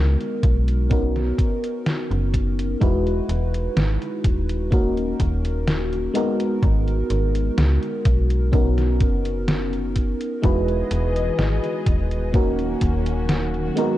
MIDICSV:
0, 0, Header, 1, 5, 480
1, 0, Start_track
1, 0, Key_signature, 5, "minor"
1, 0, Tempo, 952381
1, 1419, Time_signature, 4, 2, 24, 8
1, 7045, End_track
2, 0, Start_track
2, 0, Title_t, "FM electric piano"
2, 0, Program_c, 0, 5
2, 0, Control_c, 0, 64, 127
2, 0, Note_on_c, 0, 56, 86
2, 0, Note_on_c, 0, 59, 74
2, 0, Note_on_c, 0, 63, 76
2, 0, Note_on_c, 0, 66, 75
2, 0, Note_on_c, 0, 70, 95
2, 410, Note_off_c, 0, 56, 0
2, 411, Note_off_c, 0, 59, 0
2, 413, Note_off_c, 0, 63, 0
2, 415, Note_off_c, 0, 66, 0
2, 417, Note_off_c, 0, 70, 0
2, 452, Note_on_c, 0, 59, 73
2, 456, Note_on_c, 0, 61, 65
2, 460, Note_on_c, 0, 63, 66
2, 463, Note_on_c, 0, 66, 67
2, 465, Control_c, 0, 64, 0
2, 467, Note_on_c, 0, 70, 79
2, 551, Control_c, 0, 64, 127
2, 1370, Note_off_c, 0, 59, 0
2, 1372, Note_off_c, 0, 61, 0
2, 1374, Note_off_c, 0, 63, 0
2, 1375, Note_off_c, 0, 66, 0
2, 1378, Note_off_c, 0, 70, 0
2, 1412, Note_on_c, 0, 56, 76
2, 1416, Note_on_c, 0, 63, 72
2, 1420, Note_on_c, 0, 64, 70
2, 1423, Note_on_c, 0, 66, 73
2, 1426, Control_c, 0, 64, 0
2, 1427, Note_on_c, 0, 71, 82
2, 1518, Control_c, 0, 64, 127
2, 2330, Note_off_c, 0, 56, 0
2, 2332, Note_off_c, 0, 63, 0
2, 2334, Note_off_c, 0, 64, 0
2, 2336, Note_off_c, 0, 66, 0
2, 2337, Note_off_c, 0, 71, 0
2, 2371, Note_on_c, 0, 58, 72
2, 2376, Note_on_c, 0, 61, 67
2, 2379, Note_on_c, 0, 63, 66
2, 2383, Note_on_c, 0, 66, 69
2, 2386, Control_c, 0, 64, 0
2, 2387, Note_on_c, 0, 70, 80
2, 2487, Control_c, 0, 64, 127
2, 3049, Note_off_c, 0, 58, 0
2, 3052, Note_off_c, 0, 61, 0
2, 3053, Note_off_c, 0, 63, 0
2, 3055, Note_off_c, 0, 66, 0
2, 3057, Note_off_c, 0, 70, 0
2, 3092, Note_on_c, 0, 56, 88
2, 3096, Note_on_c, 0, 59, 82
2, 3099, Note_on_c, 0, 63, 78
2, 3103, Note_on_c, 0, 66, 78
2, 3105, Control_c, 0, 64, 0
2, 3107, Note_on_c, 0, 70, 95
2, 3187, Control_c, 0, 64, 127
2, 4250, Note_off_c, 0, 56, 0
2, 4252, Note_off_c, 0, 59, 0
2, 4253, Note_off_c, 0, 63, 0
2, 4255, Note_off_c, 0, 66, 0
2, 4257, Note_off_c, 0, 70, 0
2, 4293, Note_on_c, 0, 59, 74
2, 4296, Note_on_c, 0, 61, 66
2, 4300, Note_on_c, 0, 63, 66
2, 4304, Note_on_c, 0, 66, 67
2, 4305, Control_c, 0, 64, 0
2, 4307, Note_on_c, 0, 70, 79
2, 4390, Control_c, 0, 64, 127
2, 5210, Note_off_c, 0, 59, 0
2, 5212, Note_off_c, 0, 61, 0
2, 5214, Note_off_c, 0, 63, 0
2, 5216, Note_off_c, 0, 66, 0
2, 5217, Note_off_c, 0, 70, 0
2, 5252, Note_on_c, 0, 56, 76
2, 5256, Note_on_c, 0, 63, 70
2, 5259, Note_on_c, 0, 64, 73
2, 5263, Note_on_c, 0, 66, 70
2, 5266, Control_c, 0, 64, 0
2, 5267, Note_on_c, 0, 71, 85
2, 5353, Control_c, 0, 64, 127
2, 6170, Note_off_c, 0, 56, 0
2, 6172, Note_off_c, 0, 63, 0
2, 6173, Note_off_c, 0, 64, 0
2, 6175, Note_off_c, 0, 66, 0
2, 6177, Note_off_c, 0, 71, 0
2, 6213, Note_on_c, 0, 58, 70
2, 6217, Note_on_c, 0, 61, 66
2, 6220, Note_on_c, 0, 63, 67
2, 6224, Note_on_c, 0, 66, 68
2, 6226, Control_c, 0, 64, 0
2, 6228, Note_on_c, 0, 70, 82
2, 6326, Control_c, 0, 64, 127
2, 6890, Note_off_c, 0, 58, 0
2, 6892, Note_off_c, 0, 61, 0
2, 6894, Note_off_c, 0, 63, 0
2, 6896, Note_off_c, 0, 66, 0
2, 6898, Note_off_c, 0, 70, 0
2, 6933, Note_on_c, 0, 56, 86
2, 6936, Note_on_c, 0, 59, 79
2, 6940, Note_on_c, 0, 63, 79
2, 6944, Note_on_c, 0, 66, 78
2, 6946, Control_c, 0, 64, 0
2, 6948, Note_on_c, 0, 70, 96
2, 7038, Control_c, 0, 64, 127
2, 7045, Note_off_c, 0, 56, 0
2, 7045, Note_off_c, 0, 59, 0
2, 7045, Note_off_c, 0, 63, 0
2, 7045, Note_off_c, 0, 66, 0
2, 7045, Note_off_c, 0, 70, 0
2, 7045, End_track
3, 0, Start_track
3, 0, Title_t, "String section"
3, 0, Program_c, 1, 48
3, 5260, Note_on_c, 1, 52, 75
3, 5260, Note_on_c, 1, 56, 66
3, 5260, Note_on_c, 1, 59, 70
3, 5261, Note_on_c, 1, 68, 85
3, 5261, Note_on_c, 1, 75, 66
3, 6210, Note_off_c, 1, 52, 0
3, 6210, Note_off_c, 1, 56, 0
3, 6210, Note_off_c, 1, 59, 0
3, 6210, Note_off_c, 1, 68, 0
3, 6211, Note_off_c, 1, 75, 0
3, 6217, Note_on_c, 1, 61, 68
3, 6218, Note_on_c, 1, 51, 76
3, 6218, Note_on_c, 1, 54, 69
3, 6218, Note_on_c, 1, 58, 70
3, 6218, Note_on_c, 1, 66, 85
3, 6931, Note_off_c, 1, 58, 0
3, 6931, Note_off_c, 1, 61, 0
3, 6940, Note_on_c, 1, 56, 70
3, 6940, Note_on_c, 1, 59, 70
3, 7045, Note_off_c, 1, 51, 0
3, 7045, Note_off_c, 1, 54, 0
3, 7045, Note_off_c, 1, 56, 0
3, 7045, Note_off_c, 1, 59, 0
3, 7045, Note_off_c, 1, 66, 0
3, 7045, End_track
4, 0, Start_track
4, 0, Title_t, "FM bass"
4, 0, Program_c, 2, 39
4, 0, Note_on_c, 2, 37, 93
4, 84, Note_off_c, 2, 37, 0
4, 218, Note_on_c, 2, 35, 92
4, 668, Note_off_c, 2, 35, 0
4, 1063, Note_on_c, 2, 30, 86
4, 1388, Note_off_c, 2, 30, 0
4, 1419, Note_on_c, 2, 28, 100
4, 1621, Note_off_c, 2, 28, 0
4, 1658, Note_on_c, 2, 28, 85
4, 1861, Note_off_c, 2, 28, 0
4, 1899, Note_on_c, 2, 32, 90
4, 2004, Note_off_c, 2, 32, 0
4, 2139, Note_on_c, 2, 27, 86
4, 2589, Note_off_c, 2, 27, 0
4, 2619, Note_on_c, 2, 27, 96
4, 3069, Note_off_c, 2, 27, 0
4, 3338, Note_on_c, 2, 32, 96
4, 3541, Note_off_c, 2, 32, 0
4, 3579, Note_on_c, 2, 32, 84
4, 3781, Note_off_c, 2, 32, 0
4, 3819, Note_on_c, 2, 37, 91
4, 3924, Note_off_c, 2, 37, 0
4, 4059, Note_on_c, 2, 35, 88
4, 4296, Note_off_c, 2, 35, 0
4, 4299, Note_on_c, 2, 35, 92
4, 4540, Note_on_c, 2, 30, 85
4, 4547, Note_off_c, 2, 35, 0
4, 5112, Note_off_c, 2, 30, 0
4, 5260, Note_on_c, 2, 28, 97
4, 5462, Note_off_c, 2, 28, 0
4, 5499, Note_on_c, 2, 28, 89
4, 5701, Note_off_c, 2, 28, 0
4, 5740, Note_on_c, 2, 32, 91
4, 5844, Note_off_c, 2, 32, 0
4, 5979, Note_on_c, 2, 27, 87
4, 6429, Note_off_c, 2, 27, 0
4, 6459, Note_on_c, 2, 27, 99
4, 6909, Note_off_c, 2, 27, 0
4, 7045, End_track
5, 0, Start_track
5, 0, Title_t, "Drums"
5, 104, Note_on_c, 9, 42, 27
5, 155, Note_off_c, 9, 42, 0
5, 219, Note_on_c, 9, 36, 107
5, 219, Note_on_c, 9, 42, 93
5, 269, Note_off_c, 9, 36, 0
5, 269, Note_off_c, 9, 42, 0
5, 343, Note_on_c, 9, 42, 51
5, 393, Note_off_c, 9, 42, 0
5, 458, Note_on_c, 9, 36, 118
5, 458, Note_on_c, 9, 42, 50
5, 508, Note_off_c, 9, 42, 0
5, 509, Note_off_c, 9, 36, 0
5, 585, Note_on_c, 9, 38, 36
5, 585, Note_on_c, 9, 42, 25
5, 635, Note_off_c, 9, 38, 0
5, 635, Note_off_c, 9, 42, 0
5, 699, Note_on_c, 9, 36, 100
5, 700, Note_on_c, 9, 42, 90
5, 749, Note_off_c, 9, 36, 0
5, 750, Note_off_c, 9, 42, 0
5, 826, Note_on_c, 9, 42, 53
5, 876, Note_off_c, 9, 42, 0
5, 940, Note_on_c, 9, 38, 114
5, 940, Note_on_c, 9, 42, 52
5, 990, Note_off_c, 9, 38, 0
5, 990, Note_off_c, 9, 42, 0
5, 1066, Note_on_c, 9, 42, 26
5, 1117, Note_off_c, 9, 42, 0
5, 1179, Note_on_c, 9, 36, 62
5, 1180, Note_on_c, 9, 42, 91
5, 1229, Note_off_c, 9, 36, 0
5, 1231, Note_off_c, 9, 42, 0
5, 1306, Note_on_c, 9, 42, 52
5, 1356, Note_off_c, 9, 42, 0
5, 1419, Note_on_c, 9, 36, 115
5, 1420, Note_on_c, 9, 42, 49
5, 1469, Note_off_c, 9, 36, 0
5, 1470, Note_off_c, 9, 42, 0
5, 1546, Note_on_c, 9, 42, 26
5, 1596, Note_off_c, 9, 42, 0
5, 1660, Note_on_c, 9, 42, 88
5, 1711, Note_off_c, 9, 42, 0
5, 1786, Note_on_c, 9, 42, 53
5, 1836, Note_off_c, 9, 42, 0
5, 1900, Note_on_c, 9, 38, 116
5, 1900, Note_on_c, 9, 42, 51
5, 1950, Note_off_c, 9, 38, 0
5, 1950, Note_off_c, 9, 42, 0
5, 2026, Note_on_c, 9, 42, 25
5, 2076, Note_off_c, 9, 42, 0
5, 2139, Note_on_c, 9, 36, 105
5, 2139, Note_on_c, 9, 42, 91
5, 2189, Note_off_c, 9, 36, 0
5, 2190, Note_off_c, 9, 42, 0
5, 2265, Note_on_c, 9, 42, 50
5, 2315, Note_off_c, 9, 42, 0
5, 2379, Note_on_c, 9, 36, 125
5, 2379, Note_on_c, 9, 42, 50
5, 2429, Note_off_c, 9, 36, 0
5, 2430, Note_off_c, 9, 42, 0
5, 2506, Note_on_c, 9, 42, 26
5, 2556, Note_off_c, 9, 42, 0
5, 2619, Note_on_c, 9, 36, 59
5, 2619, Note_on_c, 9, 42, 89
5, 2669, Note_off_c, 9, 36, 0
5, 2670, Note_off_c, 9, 42, 0
5, 2745, Note_on_c, 9, 42, 53
5, 2796, Note_off_c, 9, 42, 0
5, 2860, Note_on_c, 9, 38, 120
5, 2860, Note_on_c, 9, 42, 53
5, 2910, Note_off_c, 9, 38, 0
5, 2910, Note_off_c, 9, 42, 0
5, 2987, Note_on_c, 9, 42, 25
5, 3037, Note_off_c, 9, 42, 0
5, 3099, Note_on_c, 9, 42, 90
5, 3150, Note_off_c, 9, 42, 0
5, 3224, Note_on_c, 9, 42, 52
5, 3275, Note_off_c, 9, 42, 0
5, 3339, Note_on_c, 9, 36, 109
5, 3339, Note_on_c, 9, 42, 48
5, 3389, Note_off_c, 9, 36, 0
5, 3389, Note_off_c, 9, 42, 0
5, 3465, Note_on_c, 9, 42, 25
5, 3515, Note_off_c, 9, 42, 0
5, 3579, Note_on_c, 9, 42, 87
5, 3629, Note_off_c, 9, 42, 0
5, 3704, Note_on_c, 9, 42, 51
5, 3755, Note_off_c, 9, 42, 0
5, 3819, Note_on_c, 9, 38, 119
5, 3819, Note_on_c, 9, 42, 49
5, 3870, Note_off_c, 9, 38, 0
5, 3870, Note_off_c, 9, 42, 0
5, 3945, Note_on_c, 9, 42, 25
5, 3995, Note_off_c, 9, 42, 0
5, 4058, Note_on_c, 9, 42, 84
5, 4059, Note_on_c, 9, 36, 102
5, 4109, Note_off_c, 9, 42, 0
5, 4110, Note_off_c, 9, 36, 0
5, 4185, Note_on_c, 9, 42, 49
5, 4235, Note_off_c, 9, 42, 0
5, 4299, Note_on_c, 9, 42, 48
5, 4300, Note_on_c, 9, 36, 119
5, 4350, Note_off_c, 9, 36, 0
5, 4350, Note_off_c, 9, 42, 0
5, 4425, Note_on_c, 9, 38, 37
5, 4425, Note_on_c, 9, 42, 25
5, 4475, Note_off_c, 9, 38, 0
5, 4475, Note_off_c, 9, 42, 0
5, 4539, Note_on_c, 9, 42, 90
5, 4540, Note_on_c, 9, 36, 102
5, 4589, Note_off_c, 9, 42, 0
5, 4590, Note_off_c, 9, 36, 0
5, 4664, Note_on_c, 9, 42, 49
5, 4714, Note_off_c, 9, 42, 0
5, 4778, Note_on_c, 9, 38, 115
5, 4778, Note_on_c, 9, 42, 49
5, 4829, Note_off_c, 9, 38, 0
5, 4829, Note_off_c, 9, 42, 0
5, 4904, Note_on_c, 9, 42, 25
5, 4955, Note_off_c, 9, 42, 0
5, 5018, Note_on_c, 9, 42, 91
5, 5019, Note_on_c, 9, 36, 59
5, 5068, Note_off_c, 9, 42, 0
5, 5070, Note_off_c, 9, 36, 0
5, 5144, Note_on_c, 9, 42, 48
5, 5194, Note_off_c, 9, 42, 0
5, 5259, Note_on_c, 9, 36, 114
5, 5259, Note_on_c, 9, 42, 45
5, 5309, Note_off_c, 9, 42, 0
5, 5310, Note_off_c, 9, 36, 0
5, 5385, Note_on_c, 9, 42, 24
5, 5435, Note_off_c, 9, 42, 0
5, 5498, Note_on_c, 9, 42, 82
5, 5549, Note_off_c, 9, 42, 0
5, 5625, Note_on_c, 9, 42, 50
5, 5676, Note_off_c, 9, 42, 0
5, 5739, Note_on_c, 9, 38, 112
5, 5739, Note_on_c, 9, 42, 47
5, 5790, Note_off_c, 9, 38, 0
5, 5790, Note_off_c, 9, 42, 0
5, 5865, Note_on_c, 9, 42, 24
5, 5915, Note_off_c, 9, 42, 0
5, 5979, Note_on_c, 9, 36, 99
5, 5980, Note_on_c, 9, 42, 87
5, 6030, Note_off_c, 9, 36, 0
5, 6030, Note_off_c, 9, 42, 0
5, 6105, Note_on_c, 9, 42, 47
5, 6155, Note_off_c, 9, 42, 0
5, 6219, Note_on_c, 9, 42, 46
5, 6220, Note_on_c, 9, 36, 122
5, 6270, Note_off_c, 9, 36, 0
5, 6270, Note_off_c, 9, 42, 0
5, 6344, Note_on_c, 9, 42, 24
5, 6395, Note_off_c, 9, 42, 0
5, 6458, Note_on_c, 9, 42, 85
5, 6459, Note_on_c, 9, 36, 57
5, 6508, Note_off_c, 9, 42, 0
5, 6510, Note_off_c, 9, 36, 0
5, 6584, Note_on_c, 9, 42, 48
5, 6634, Note_off_c, 9, 42, 0
5, 6698, Note_on_c, 9, 38, 115
5, 6698, Note_on_c, 9, 42, 47
5, 6749, Note_off_c, 9, 38, 0
5, 6749, Note_off_c, 9, 42, 0
5, 6825, Note_on_c, 9, 42, 23
5, 6875, Note_off_c, 9, 42, 0
5, 6939, Note_on_c, 9, 42, 86
5, 6990, Note_off_c, 9, 42, 0
5, 7045, End_track
0, 0, End_of_file